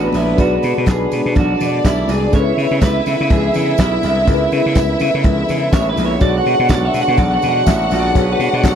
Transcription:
Already playing: french horn section D3 G#3 B3 D4, string section B3 B4, tine electric piano D4 F#4 G#4 C#5, clean electric guitar F#4
0.13 slap bass A#1, clean electric guitar E4, open hi-hat, tambourine, high conga
0.36 slap bass B1, tine electric piano D4 F#4 G#4 D5, clean electric guitar F#4, kick, closed hi-hat, tambourine
0.63 slap bass B2, open hi-hat, tambourine, muted conga
0.78 slap bass B2
0.86 slap bass B1, clean electric guitar G#4, kick, snare, clap, closed hi-hat, tambourine, high conga
1.11 slap bass B2, open hi-hat, tambourine, muted conga
1.26 slap bass B2
1.35 slap bass B1, string section D4 D5, clean electric guitar F#4, kick, closed hi-hat, tambourine, muted conga, low conga
1.60 slap bass B2, open hi-hat, tambourine, low conga
1.85 slap bass B1, clean electric guitar E4, kick, snare, clap, closed hi-hat, tambourine, high conga
2.08 slap bass C2, clean electric guitar G#4, open hi-hat, tambourine, high conga
2.31 slap bass C#2, french horn section G#3 E4, tine electric piano C#4 E4 G#4 A4, string section E4 E5, clean electric guitar C#5, kick, closed hi-hat, tambourine
2.40 tine electric piano B4
2.57 slap bass C#3, open hi-hat
2.71 slap bass C#3
2.81 slap bass C#2, clean electric guitar B4, kick, snare, clap, closed hi-hat, tambourine, high conga
3.06 slap bass C#3, open hi-hat, tambourine, muted conga
3.21 slap bass C#3
3.30 slap bass C#2, clean electric guitar G#4, kick, closed hi-hat, tambourine, muted conga, low conga
3.54 slap bass C#3, open hi-hat, tambourine, low conga
3.78 slap bass B1, clean electric guitar E4, kick, snare, clap, closed hi-hat, tambourine, high conga
4.03 slap bass C2, open hi-hat, tambourine, high conga
4.26 slap bass C#2, tine electric piano C#4 E4 G#4 A#4, kick, closed hi-hat, tambourine
4.34 tine electric piano B4
4.52 slap bass C#3, open hi-hat, tambourine
4.66 slap bass C#3
4.75 slap bass C#2, kick, snare, clap, closed hi-hat, tambourine, high conga
4.99 slap bass C#3, open hi-hat, tambourine, muted conga
5.14 slap bass C#3
5.24 slap bass C#2, kick, closed hi-hat, muted conga, low conga
5.48 slap bass C#3, open hi-hat, tambourine, low conga
5.73 slap bass A1, clean electric guitar C#5, kick, snare, clap, closed hi-hat, tambourine, high conga
5.89 clean electric guitar B4
5.96 slap bass A#1, open hi-hat, tambourine, high conga
6.05 clean electric guitar C#5
6.20 slap bass B1, tine electric piano D4 F#4 G#4 C#5, french horn section D4, string section F#4 F#5, clean electric guitar D5, kick, closed hi-hat, tambourine
6.38 clean electric guitar F#5
6.46 slap bass B2, open hi-hat, muted conga
6.54 clean electric guitar F#5
6.59 slap bass B2
6.69 slap bass B1, clean electric guitar D5, kick, snare, clap, closed hi-hat, tambourine, high conga
6.85 clean electric guitar E5
6.93 slap bass B2, open hi-hat, tambourine, muted conga
7.01 clean electric guitar F#5
7.08 slap bass B2
7.17 slap bass B1, clean electric guitar D5, kick, closed hi-hat, tambourine, muted conga, low conga
7.34 clean electric guitar F#5
7.42 slap bass B2, open hi-hat, tambourine, low conga
7.49 clean electric guitar F#5
7.66 slap bass A1, clean electric guitar E5, kick, snare, clap, closed hi-hat, tambourine, high conga
7.91 slap bass A#1, open hi-hat, tambourine, high conga
7.99 clean electric guitar D5
8.13 slap bass B1, tine electric piano D4 F#4 G#4 C#5, clean electric guitar B4, kick, closed hi-hat, tambourine
8.32 clean electric guitar B4
8.39 slap bass B2, open hi-hat, tambourine, muted conga
8.48 clean electric guitar D5
8.53 slap bass B2
8.63 slap bass B1, kick, snare, clap, closed hi-hat, tambourine, high conga

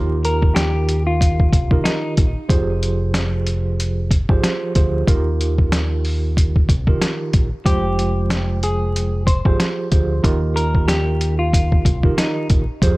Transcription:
Already playing: fingered electric bass D#2, tine electric piano D#3 D#4 F4 G4 A#4
0.25 clean electric guitar A#4, closed hi-hat
0.42 kick
0.55 clean electric guitar G4, snare, closed hi-hat
0.89 closed hi-hat
1.07 clean electric guitar F4
1.21 kick, closed hi-hat
1.40 kick
1.53 fingered electric bass C2, kick, closed hi-hat
1.71 tine electric piano D#3 D#4 F4 G4 A#4, kick
1.84 clean electric guitar D#4, snare, closed hi-hat
2.17 fingered electric bass A#1, kick, closed hi-hat
2.48 fingered electric bass F1, tine electric piano F3 F4 G4 G#4 C5, kick, closed hi-hat
2.83 closed hi-hat
3.14 snare, closed hi-hat
3.47 closed hi-hat
3.80 closed hi-hat
4.11 kick, closed hi-hat
4.29 fingered electric bass G#1, tine electric piano F3 F4 G4 G#4 C5, kick
4.43 snare, closed hi-hat
4.75 fingered electric bass D2, tine electric piano F3 F4 G4 G#4 C5, kick, closed hi-hat
5.07 fingered electric bass D#2, tine electric piano D#3 D#4 F4 G4 A#4, kick, closed hi-hat
5.41 closed hi-hat
5.58 kick
5.72 snare, closed hi-hat
6.05 open hi-hat
6.37 kick, closed hi-hat
6.56 kick
6.69 fingered electric bass C2, kick, closed hi-hat
6.87 tine electric piano D#3 D#4 F4 G4 A#4, kick
7.02 snare, closed hi-hat
7.33 fingered electric bass A#1, kick, closed hi-hat
7.65 fingered electric bass F1, tine electric piano F3 G#3 F4 C5 G5, clean electric guitar G4, kick, closed hi-hat
7.99 closed hi-hat
8.30 snare, closed hi-hat
8.63 clean electric guitar G#4, closed hi-hat
8.96 closed hi-hat
9.27 clean electric guitar C5, kick, closed hi-hat
9.45 fingered electric bass G#1, tine electric piano F3 F4 G4 G#4 C5, kick
9.60 snare, closed hi-hat
9.91 fingered electric bass D2, tine electric piano F3 F4 G4 G#4 C5, kick, closed hi-hat
10.23 fingered electric bass D#2, tine electric piano D#3 D#4 F4 G4 A#4, kick, closed hi-hat
10.56 clean electric guitar A#4, closed hi-hat
10.75 kick
10.88 clean electric guitar G4, snare, closed hi-hat
11.21 closed hi-hat
11.39 clean electric guitar F4
11.53 kick, closed hi-hat
11.72 kick
11.85 fingered electric bass C2, kick, closed hi-hat
12.03 tine electric piano D#3 D#4 F4 G4 A#4, kick
12.18 clean electric guitar D#4, snare, closed hi-hat
12.50 fingered electric bass A#1, kick, closed hi-hat
12.82 fingered electric bass F2, tine electric piano F3 F4 G4 G#4 C5, kick, closed hi-hat

